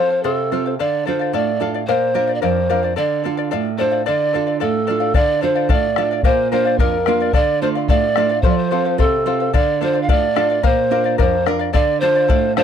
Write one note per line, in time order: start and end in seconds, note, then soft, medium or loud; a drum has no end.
0.00 0.22 F3 medium
0.00 0.40 C4 soft
0.00 0.40 F4 soft
0.00 0.10 A4 soft
0.00 0.40 A4 soft
0.00 0.10 C5 medium
0.00 0.23 C5 medium
0.10 0.24 C5 soft
0.10 0.24 F5 soft
0.23 0.77 C3 medium
0.23 0.74 A4 medium
0.23 0.50 A4 medium
0.23 0.51 C5 medium
0.23 0.51 F5 medium
0.51 0.73 C4 soft
0.51 0.74 F4 soft
0.51 0.65 A4 medium
0.51 0.74 A4 soft
0.51 0.65 C5 soft
0.51 0.65 F5 medium
0.66 0.79 C5 soft
0.66 0.79 F5 soft
0.79 1.32 D3 medium
0.79 1.04 A4 medium
0.79 1.08 D5 medium
0.79 1.05 D5 medium
0.79 1.06 F5 medium
1.05 1.50 D4 soft
1.05 1.51 F4 soft
1.05 1.19 A4 soft
1.05 1.51 A4 soft
1.05 1.36 C5 medium
1.05 1.20 D5 soft
1.05 1.18 F5 medium
1.19 1.33 D5 soft
1.19 1.33 F5 soft
1.33 1.86 A2 medium
1.33 1.59 A4 medium
1.33 1.59 D5 medium
1.33 1.64 D5 medium
1.33 1.60 F5 medium
1.60 1.82 D4 soft
1.60 1.82 F4 soft
1.60 1.74 A4 medium
1.60 1.83 A4 medium
1.60 1.74 D5 medium
1.60 1.73 F5 medium
1.74 1.87 D5 soft
1.74 1.88 F5 soft
1.87 2.41 A#2 medium
1.87 2.13 A#4 medium
1.87 2.34 C5 medium
1.87 2.14 D5 medium
1.87 2.15 F5 medium
2.14 2.58 D4 soft
2.14 2.59 F4 soft
2.14 2.28 A#4 medium
2.14 2.59 A#4 soft
2.14 2.27 D5 medium
2.14 2.26 F5 medium
2.28 2.41 D5 soft
2.28 2.42 F5 soft
2.35 2.44 D5 medium
2.42 2.95 F2 medium
2.42 2.68 A#4 medium
2.42 2.96 C5 medium
2.42 2.68 D5 medium
2.42 2.69 F5 medium
2.69 2.91 D4 soft
2.69 2.92 F4 soft
2.69 2.83 A#4 medium
2.69 2.92 A#4 soft
2.69 2.82 D5 medium
2.69 2.82 F5 medium
2.83 2.95 D5 soft
2.83 2.96 F5 soft
2.96 3.50 D3 medium
2.96 3.22 A4 medium
2.96 3.22 D5 medium
2.96 3.23 D5 medium
2.96 3.24 F5 medium
3.24 3.69 D4 soft
3.24 3.69 F4 soft
3.24 3.38 A4 medium
3.24 3.69 A4 soft
3.24 3.37 D5 soft
3.24 3.36 F5 medium
3.37 3.50 D5 soft
3.37 3.51 F5 medium
3.51 4.05 A2 medium
3.51 3.77 A4 medium
3.51 3.78 D5 medium
3.51 3.78 F5 medium
3.78 4.01 D4 soft
3.78 4.01 F4 soft
3.78 3.92 A4 medium
3.78 4.02 A4 soft
3.78 4.04 C5 medium
3.78 3.91 D5 medium
3.78 3.90 F5 medium
3.91 4.05 D5 soft
3.91 4.05 F5 soft
4.06 4.60 D3 medium
4.06 4.32 A4 medium
4.06 4.57 D5 medium
4.06 4.33 D5 medium
4.06 4.33 F5 medium
4.33 4.78 D4 soft
4.33 4.78 F4 soft
4.33 4.47 A4 soft
4.33 4.79 A4 soft
4.33 4.47 D5 medium
4.33 4.46 F5 medium
4.47 4.60 D5 soft
4.47 4.60 F5 soft
4.60 5.14 A2 medium
4.60 4.86 A4 medium
4.60 5.17 A4 medium
4.60 4.86 D5 medium
4.60 4.87 F5 medium
4.87 5.11 D4 soft
4.87 5.11 F4 soft
4.87 5.01 A4 medium
4.87 5.11 A4 soft
4.87 5.00 D5 medium
4.87 4.99 F5 medium
5.00 5.13 D5 soft
5.00 5.14 F5 medium
5.14 5.69 D3 medium
5.14 5.40 A4 medium
5.14 5.41 D5 medium
5.14 5.42 D5 loud
5.14 5.41 F5 medium
5.14 bombo low medium
5.41 5.87 D4 soft
5.41 5.87 F4 soft
5.41 5.56 A4 medium
5.41 5.87 A4 soft
5.41 5.68 C5 medium
5.41 5.55 D5 medium
5.41 5.54 F5 medium
5.55 5.68 D5 soft
5.55 5.69 F5 soft
5.69 6.23 A2 medium
5.69 5.95 A4 medium
5.69 5.97 D5 medium
5.69 6.22 D5 medium
5.69 5.97 F5 medium
5.69 bombo low medium
5.96 6.20 D4 soft
5.96 6.20 F4 soft
5.96 6.11 A4 medium
5.96 6.20 A4 medium
5.96 6.11 D5 medium
5.96 6.10 F5 medium
5.96 bombo rim soft
6.11 6.24 D5 soft
6.11 6.24 F5 soft
6.23 6.78 A#2 medium
6.23 6.50 A#4 medium
6.23 6.50 C5 medium
6.23 6.51 D5 medium
6.23 6.52 F5 medium
6.23 bombo low medium
6.52 6.96 A#3 soft
6.52 6.96 D4 soft
6.52 6.96 F4 soft
6.52 6.66 A#4 soft
6.52 6.80 C5 medium
6.52 6.65 D5 medium
6.52 6.64 F5 medium
6.65 6.79 D5 soft
6.65 6.79 F5 soft
6.78 7.33 F2 medium
6.78 7.36 A#4 medium
6.78 7.05 A#4 medium
6.78 7.06 D5 medium
6.78 7.07 F5 medium
6.78 bombo low medium
7.06 7.29 A#3 soft
7.06 7.30 D4 soft
7.06 7.30 F4 medium
7.06 7.20 A#4 medium
7.06 7.20 D5 medium
7.06 7.19 F5 medium
7.06 bombo rim soft
7.20 7.33 D5 soft
7.20 7.33 F5 medium
7.33 7.89 D3 medium
7.33 7.61 A4 medium
7.33 7.62 D5 medium
7.33 7.61 D5 loud
7.33 7.62 F5 medium
7.33 bombo low medium
7.62 8.06 A3 soft
7.62 8.06 D4 soft
7.62 8.06 F4 soft
7.62 7.76 A4 medium
7.62 7.68 C5 medium
7.62 7.75 D5 medium
7.62 7.74 F5 medium
7.75 7.89 D5 soft
7.75 7.89 F5 medium
7.88 8.43 A2 medium
7.88 8.15 A4 medium
7.88 8.40 D5 medium
7.88 8.16 D5 medium
7.88 8.16 F5 medium
7.88 bombo low medium
8.16 8.39 A3 soft
8.16 8.39 D4 soft
8.16 8.39 F4 medium
8.16 8.30 A4 medium
8.16 8.30 D5 medium
8.16 8.28 F5 medium
8.16 bombo rim soft
8.30 8.43 D5 soft
8.30 8.44 F5 soft
8.42 8.98 F3 medium
8.42 8.70 A4 medium
8.42 8.50 C5 medium
8.42 8.70 C5 medium
8.42 8.71 F5 medium
8.42 bombo low medium
8.48 8.59 D5 medium
8.57 9.01 C5 medium
8.71 9.16 C4 soft
8.71 9.16 F4 soft
8.71 8.85 A4 medium
8.71 9.16 A4 soft
8.71 8.85 C5 medium
8.71 8.84 F5 medium
8.85 8.98 C5 soft
8.85 8.98 F5 soft
8.98 9.52 C3 medium
8.98 9.25 A4 medium
8.98 9.57 A4 medium
8.98 9.25 C5 medium
8.98 9.26 F5 medium
8.98 bombo low medium
9.26 9.48 C4 soft
9.26 9.48 F4 soft
9.26 9.40 A4 medium
9.26 9.49 A4 soft
9.26 9.40 C5 medium
9.26 9.39 F5 medium
9.40 9.55 C5 soft
9.40 9.53 F5 soft
9.53 10.08 D3 medium
9.53 9.80 A4 medium
9.53 9.80 D5 medium
9.53 9.85 D5 loud
9.53 9.81 F5 medium
9.53 bombo low medium
9.81 10.26 D4 soft
9.81 10.26 F4 soft
9.81 9.95 A4 medium
9.81 10.26 A4 soft
9.81 10.01 C5 medium
9.81 9.94 D5 medium
9.81 9.93 F5 medium
9.94 10.08 D5 soft
9.94 10.08 F5 soft
10.02 10.12 F5 medium
10.09 10.63 A2 medium
10.09 10.34 A4 medium
10.09 10.35 D5 medium
10.09 10.66 D5 medium
10.09 10.36 F5 medium
10.09 bombo low medium
10.36 10.58 D4 soft
10.36 10.59 F4 soft
10.36 10.50 A4 medium
10.36 10.59 A4 medium
10.36 10.50 D5 medium
10.36 10.49 F5 medium
10.36 bombo rim soft
10.50 10.62 D5 soft
10.50 10.63 F5 soft
10.63 11.18 A#2 medium
10.63 10.90 A#4 medium
10.63 11.19 C5 medium
10.63 10.90 D5 medium
10.63 10.91 F5 medium
10.63 bombo low medium
10.91 11.35 D4 soft
10.91 11.36 F4 soft
10.91 11.05 A#4 soft
10.91 11.36 A#4 medium
10.91 11.04 D5 medium
10.91 11.03 F5 medium
11.04 11.18 D5 soft
11.04 11.18 F5 soft
11.18 11.73 F2 medium
11.18 11.45 A#4 medium
11.18 11.45 C5 medium
11.18 11.45 D5 medium
11.18 11.46 F5 medium
11.18 bombo low medium
11.46 11.69 D4 soft
11.46 11.69 F4 soft
11.46 11.60 A#4 medium
11.46 11.69 A#4 medium
11.46 11.59 D5 medium
11.46 11.58 F5 medium
11.46 bombo rim soft
11.59 11.72 D5 soft
11.59 11.73 F5 soft
11.73 12.28 D3 medium
11.73 12.00 A4 medium
11.73 12.00 D5 loud
11.73 12.01 D5 medium
11.73 12.02 F5 medium
11.73 bombo low medium
12.00 12.46 D4 soft
12.00 12.46 F4 soft
12.00 12.15 A4 medium
12.00 12.46 A4 medium
12.00 12.52 C5 loud
12.00 12.15 D5 medium
12.00 12.14 F5 medium
12.15 12.28 D5 soft
12.15 12.29 F5 medium
12.28 12.64 A2 medium
12.28 12.56 A4 medium
12.28 12.57 D5 medium
12.28 12.57 F5 medium
12.28 bombo low medium
12.57 12.64 D4 soft
12.57 12.64 F4 soft
12.57 12.64 A4 medium
12.57 12.64 C5 medium
12.57 12.64 D5 medium
12.57 12.64 F5 medium
12.57 bombo rim soft